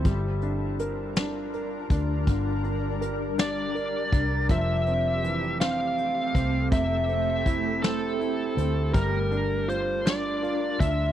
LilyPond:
<<
  \new Staff \with { instrumentName = "Lead electric guitar" } { \time 6/8 \key g \dorian \tempo 4. = 54 r2. | r4. d''4. | e''4. f''4. | e''4. a'4. |
bes'4 c''8 d''4 e''8 | }
  \new Staff \with { instrumentName = "Ambient pad" } { \time 6/8 \key g \dorian << { <g d' bes'>2.~ | <g d' bes'>2. | <a c' a'>2.~ | <a c' a'>2. |
<g d' bes'>2. | } \\ { f'2. | g'2.~ | g'2.~ | g'2. |
f'2. | } >> }
  \new Staff \with { instrumentName = "Grand piano" } { \time 6/8 \key g \dorian g8 d'8 bes'8 d'8 bes'8 d'8 | d8 d'8 bes'8 d'8 bes'8 d'8 | f8 c'8 e8 c'4 c'8 | c8 c'8 e'8 c'8 e'8 c'8 |
g8 d'8 f'8 d'8 f'8 d'8 | }
  \new Staff \with { instrumentName = "Fingered electric bass" } { \clef bass \time 6/8 \key g \dorian g,,2~ g,,8 d,8 | g,,2~ g,,8 c,8 | f,,2~ f,,8 c,8 | f,,2~ f,,8 d,8 |
g,,2~ g,,8 d,8 | }
  \new DrumStaff \with { instrumentName = "Drums" } \drummode { \time 6/8 <hh bd>8 hh8 hh8 <hh sn>8 hh8 <hh bd>8 | <hh bd>8 hh8 hh8 <hh sn>8 hh8 <hh bd>8 | <hh bd>8 hh8 hh8 <hh sn>8 hh8 <hh bd>8 | <hh bd>8 hh8 <hh bd>8 <hh sn>8 hh8 hh8 |
<hh bd>8 hh8 hh8 <hh sn>8 hh8 <hh bd>8 | }
>>